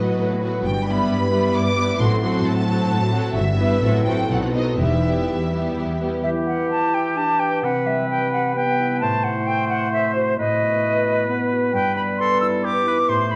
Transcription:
Already playing: A2 F#3 B3 F#4 B4 D#5
0.19 A2 B4
0.41 F#3 B3 F#4 B4
0.64 G1 G2 G5
0.86 G3 B3 E4 B4 B5
1.09 G2 B4
1.31 G3 B3 E4 G4 B4
1.55 G2 B4 D6
1.76 G3 B3 E4 B4
1.99 A1 A2 F#3 C4 F#4 A4 C6
2.22 F#3 C4 F#4 A4
2.45 A2 C5 A5
2.67 F#3 C4 F#4 A4
2.91 A2 C5
3.12 F#3 C4 F#4 A4
3.35 G1 G2 E5
3.58 G3 B3 E4 B4
3.83 A1 A2 F#3 C4 F#4 A4
4.05 F#3 C4 F#4 A4 C5 G5
4.29 B1 B2 F#3 C4 D#4 A4 F#5
4.54 F#3 C4 D#4 A4 C5 D#5
4.79 E1 E2 E3 G3 B3 E4 G4 E5
5.03 G3 B3 E4 G4
5.29 E2 G4
5.52 G3 B3 E4 G4 E5
5.77 E2 G4
6.01 G3 B3 E4 G4 B4
6.24 E3 E4 G4 E5
6.46 E4 F#5
6.71 G4 A5
6.94 E5 G5
7.16 D4 G4 A5
7.40 B4 G5
7.62 C3 C4 B4 F#5
7.86 G3 E5
8.10 B4 G5
8.33 G4 F#5
8.55 B3 B4 G5
8.79 E4
9.01 A2 A3 C5 A5
9.24 C4 F#5
9.47 A4 G5
9.69 C5 F#5
9.93 A4 E5
10.15 F#4 C5
10.39 A2 A3 B4 D#5
10.62 B3
10.85 B4
11.07 F#4
11.29 B3 B4
11.52 F#4
11.73 G2 G3 B4 G5
11.96 B3 B5
12.18 A4 B4 C6
12.41 E4 E6
12.64 G4 B4 D6
12.86 E4 B4
13.08 A2 A3 C5 C6
13.31 C4 B5

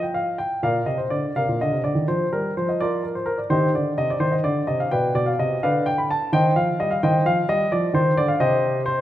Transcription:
Already playing: F3
0.03 G5
0.14 F5
0.38 G5
0.63 A#2 A#4 D5 F5
0.86 C3 D#5
0.98 C5
1.10 D3 D5
1.36 C3 A#4 D5 F5
1.48 A#2
1.61 D3 D#5
1.71 C3
1.84 D3 D5
1.95 D#3
2.08 F3 C5
2.32 G3 A#4
2.57 F3 C5
2.69 D#5
2.81 F4 A#4 D5
3.03 A#4
3.15 C5
3.26 A#4
3.38 D5
3.50 D#3 D#4 G4 C5
3.74 D3 D5
3.98 C3 D#5
4.10 D5
4.20 D#3 C5
4.32 D#5
4.43 D3 D5
4.67 C3 D#5
4.80 F5
4.91 B2 B4 D5 G5
5.14 B2 D5
5.26 F5
5.39 C3 D#5
5.63 D3 B4 D5 F5
5.86 G5
5.98 B5
6.11 A5
6.33 D#3 C5 D#5 G5
6.56 F3 F5
6.80 G3 D#5
6.91 F5
7.03 D#3 C5 D#5 G5
7.26 F3 F5
7.49 G3 D#5
7.72 F3 D5
7.94 D#3 C5
8.17 D3 D5
8.28 F5
8.40 C3 G4 C5 D#5
8.86 C5

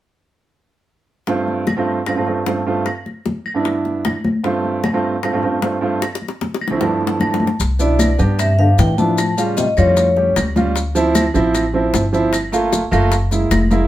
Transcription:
1.27 G2 A3 C4 F4, high bongo, high conga
1.48 high conga
1.67 high bongo, high conga, claves
1.77 G2 A3 C4 F4
2.06 G2 A3 C4 F4, high bongo, high conga, claves
2.16 G2 A3 C4 F4
2.26 G2 A3 C4 F4, high conga
2.46 G2 A3 C4 F4, high bongo, low bongo, high conga
2.66 G2 A3 C4 F4
2.86 high bongo, high conga, claves
3.06 high bongo, high conga
3.26 high bongo, high conga
3.46 high conga, claves
3.54 G2 B3 D4 E4
3.65 high bongo, high conga
3.85 high bongo, high conga
4.05 high bongo, low bongo, high conga, claves
4.24 high bongo, high conga
4.44 G2 A3 C4 F4, high bongo, high conga
4.64 high conga
4.84 high bongo, high conga, claves
4.93 G2 A3 C4 F4
5.22 G2 A3 C4 F4, high bongo, high conga, claves
5.33 G2 A3 C4 F4
5.43 G2 A3 C4 F4, high conga
5.62 G2 A3 C4 F4, high bongo, low bongo, high conga
5.81 G2 A3 C4 F4
6.02 high bongo, high conga, claves
6.15 high bongo
6.22 high conga
6.28 high bongo
6.41 high bongo, high conga
6.54 high bongo
6.61 high conga, claves
6.68 D2 F3 C4 E4, low bongo
6.80 G2 F3 A3 B3 D4 E4, low bongo, high conga
7.01 high conga
7.07 low bongo
7.20 A5, low bongo, high conga, claves
7.34 low bongo
7.40 high conga
7.47 low bongo
7.60 C2, high bongo, high conga, maracas
7.79 B2 B3 D4 E4 D5, high conga, maracas
7.99 high bongo, high conga, claves, maracas
8.18 G2 B3 D4 G4, maracas
8.39 C3 E5, high bongo, high conga, claves, maracas
8.58 D3 B3 D4 G4 F5, high conga
8.78 A2 E3 G5, high bongo, low bongo, high conga, maracas
8.98 F3 B3 D4 E4 A5, high conga, maracas
9.18 high bongo, high conga, claves, maracas
9.37 C#3 G3 C#4 F4 F5, high bongo, high conga, maracas
9.57 C3 D#5, high bongo, high conga, maracas
9.77 F2 A2 G3 C#4 F4 C#5, high conga, claves, maracas
9.97 high bongo, high conga, maracas
10.16 G3 C#4 G4, high bongo, high conga
10.36 D2, high bongo, low bongo, high conga, claves, maracas
10.56 G3 C#4 F4, high bongo, high conga, maracas
10.76 high bongo, high conga, maracas
10.95 F3 C4 E4, high conga, maracas
11.15 high bongo, high conga, claves, maracas
11.34 A1 F3 C4 E4, maracas
11.55 high bongo, high conga, claves, maracas
11.74 F3 C4 E4, high conga
11.94 G1, high bongo, low bongo, high conga, maracas
12.13 F3 C4 E4, maracas
12.33 high bongo, high conga, claves, maracas
12.52 A3 A#3 F4, high bongo, high conga, maracas
12.73 high bongo, high conga, maracas
12.91 F#1 A3 A#3 F4, high conga, claves, maracas
13.12 high bongo, high conga, maracas
13.31 G#3 A#3 E4, high bongo, high conga, maracas
13.51 F1, high bongo, low bongo, high conga, claves, maracas
13.71 G#3 A#3 E4, high bongo, high conga, maracas

